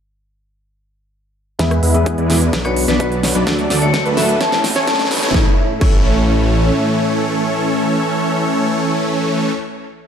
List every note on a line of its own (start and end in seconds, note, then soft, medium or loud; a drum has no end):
1.59 1.80 E2 medium
1.59 1.91 E3 medium
1.59 2.52 E3 medium
1.59 1.78 G#3 medium
1.59 1.92 B3 medium
1.59 1.78 B3 medium
1.59 2.52 E4 medium
1.59 1.78 E4 medium
1.59 1.92 E4 medium
1.59 2.52 G#4 medium
1.59 1.92 G#4 medium
1.59 2.52 B4 medium
1.59 1.78 B4 medium
1.59 1.92 B4 medium
1.59 1.78 E5 loud
1.59 kick loud
1.59 snare soft
1.59 closed hi-hat medium
1.59 riser medium
1.71 cross-stick medium
1.71 closed hi-hat soft
1.83 2.16 E2 loud
1.83 2.15 G#3 medium
1.83 2.15 B3 medium
1.83 2.15 E4 medium
1.83 2.15 B4 medium
1.83 2.15 E5 medium
1.83 open hi-hat loud
1.94 2.27 E3 medium
1.94 2.27 B3 medium
1.94 2.27 E4 medium
1.94 2.27 G#4 medium
1.94 2.27 B4 medium
1.94 closed hi-hat medium
2.06 kick loud
2.06 closed hi-hat medium
2.18 2.51 E2 loud
2.18 2.48 G#3 medium
2.18 2.48 B3 medium
2.18 2.48 E4 medium
2.18 2.48 B4 medium
2.18 2.48 D5 loud
2.18 closed hi-hat soft
2.29 2.43 B2 medium
2.29 2.43 B3 medium
2.29 2.43 E4 medium
2.29 2.43 G#4 medium
2.29 2.43 B4 medium
2.29 snare medium
2.29 open hi-hat loud
2.41 closed hi-hat medium
2.53 2.86 B1 loud
2.53 2.72 F#3 medium
2.53 2.72 B3 medium
2.53 3.46 B3 medium
2.53 2.72 D4 medium
2.53 3.46 D4 medium
2.53 4.39 F#4 medium
2.53 2.72 B4 medium
2.53 2.72 D5 medium
2.53 kick loud
2.53 snare medium
2.53 closed hi-hat medium
2.64 2.97 B2 medium
2.64 2.97 B3 medium
2.64 2.97 D4 medium
2.64 2.97 F#4 medium
2.64 2.97 B4 medium
2.64 2.81 C#5 medium
2.64 cross-stick medium
2.64 closed hi-hat soft
2.77 open hi-hat loud
2.88 3.33 B1 loud
2.88 3.18 F#3 medium
2.88 3.18 B3 medium
2.88 3.18 D4 medium
2.88 3.05 B4 medium
2.88 3.18 B4 medium
2.88 3.18 D5 loud
2.88 snare medium
2.88 closed hi-hat medium
2.99 3.13 B2 medium
2.99 3.13 B3 medium
2.99 3.13 D4 medium
2.99 3.13 F#4 medium
2.99 3.14 B4 medium
2.99 kick loud
2.99 closed hi-hat medium
3.12 closed hi-hat soft
3.23 3.37 B3 medium
3.23 3.37 D4 medium
3.23 3.37 F#4 medium
3.23 3.37 C#5 medium
3.23 snare medium
3.23 open hi-hat loud
3.35 3.44 B1 loud
3.35 3.44 F#3 medium
3.35 3.44 B3 medium
3.35 3.44 D4 medium
3.35 3.44 B4 medium
3.35 3.44 D5 medium
3.35 closed hi-hat medium
3.46 3.68 D2 medium
3.46 3.79 D3 medium
3.46 4.40 D3 medium
3.46 3.65 F#3 loud
3.46 3.79 A3 medium
3.46 3.65 A3 medium
3.46 3.65 D4 medium
3.46 3.79 D4 medium
3.46 4.40 D4 medium
3.46 3.79 F#4 medium
3.46 3.65 A4 medium
3.46 4.40 A4 medium
3.46 3.79 A4 medium
3.46 3.66 D5 loud
3.46 kick loud
3.46 snare medium
3.46 closed hi-hat medium
3.59 closed hi-hat soft
3.70 4.03 D2 medium
3.70 4.03 F#3 medium
3.70 4.03 A3 medium
3.70 4.03 D4 medium
3.70 4.03 A4 medium
3.70 4.03 D5 medium
3.70 snare medium
3.70 open hi-hat loud
3.82 4.14 D3 medium
3.82 4.14 A3 medium
3.82 4.14 D4 medium
3.82 4.15 F#4 medium
3.82 4.15 A4 medium
3.82 3.98 C#5 medium
3.82 closed hi-hat medium
3.94 kick loud
3.94 snare medium
3.94 closed hi-hat medium
4.05 4.38 D2 loud
4.05 4.35 F#3 medium
4.05 4.35 A3 medium
4.05 4.35 D4 medium
4.05 4.35 A4 medium
4.05 4.35 B4 loud
4.05 closed hi-hat soft
4.17 4.30 A2 medium
4.17 4.30 A3 medium
4.17 4.31 D4 medium
4.17 4.31 F#4 medium
4.17 4.31 A4 medium
4.17 4.34 E5 medium
4.17 snare medium
4.17 open hi-hat loud
4.29 closed hi-hat medium
4.41 4.73 A1 loud
4.41 4.59 E3 medium
4.41 5.33 A3 medium
4.41 4.59 A3 medium
4.41 4.59 C#4 medium
4.41 5.33 C#4 medium
4.41 5.33 E4 medium
4.41 4.59 A4 medium
4.41 4.59 C#5 medium
4.41 4.57 A5 medium
4.41 kick loud
4.41 snare loud
4.41 closed hi-hat medium
4.52 4.84 A2 medium
4.52 4.84 A3 medium
4.52 4.85 C#4 medium
4.52 4.85 E4 medium
4.52 4.85 A4 medium
4.52 snare medium
4.52 closed hi-hat soft
4.64 snare loud
4.64 open hi-hat loud
4.76 5.20 A1 loud
4.76 5.06 E3 medium
4.76 5.06 A3 medium
4.76 5.06 C#4 medium
4.76 5.06 A4 medium
4.76 5.06 C#5 loud
4.76 4.83 A5 medium
4.76 snare medium
4.76 closed hi-hat medium
4.87 5.01 A2 medium
4.87 5.01 A3 medium
4.87 5.01 C#4 medium
4.87 5.01 E4 medium
4.87 5.01 A4 loud
4.87 4.95 A5 medium
4.87 kick loud
4.87 snare loud
4.87 closed hi-hat medium
4.93 snare medium
4.99 snare medium
4.99 closed hi-hat soft
5.05 snare medium
5.10 5.24 A2 medium
5.10 5.24 A3 medium
5.10 5.24 C#4 medium
5.10 5.24 E4 medium
5.10 5.25 B4 medium
5.10 snare loud
5.10 open hi-hat loud
5.17 snare medium
5.23 5.32 A1 loud
5.23 5.32 E3 medium
5.23 5.32 A3 medium
5.23 5.32 C#4 medium
5.23 5.32 A4 medium
5.23 5.32 C#5 medium
5.23 snare loud
5.23 closed hi-hat medium
5.29 snare loud
5.33 5.47 A1 loud
5.33 9.04 A2 medium
5.33 5.47 E3 medium
5.33 5.46 A3 medium
5.33 5.47 A3 medium
5.33 9.04 A3 medium
5.33 5.47 C#4 medium
5.33 9.04 C#4 medium
5.33 9.04 E4 medium
5.33 5.48 E4 medium
5.33 5.47 A4 medium
5.33 5.48 A4 medium
5.33 5.47 C#5 medium
5.33 kick loud
5.33 snare medium
5.79 6.71 A1 loud
5.79 9.51 E3 medium
5.79 9.49 A3 medium
5.79 9.51 A3 medium
5.79 9.51 C#4 medium
5.79 9.52 E4 medium
5.79 9.51 A4 medium
5.79 9.53 A4 loud
5.79 9.51 C#5 medium
5.79 9.51 C#5 loud
5.79 kick loud
5.79 crash medium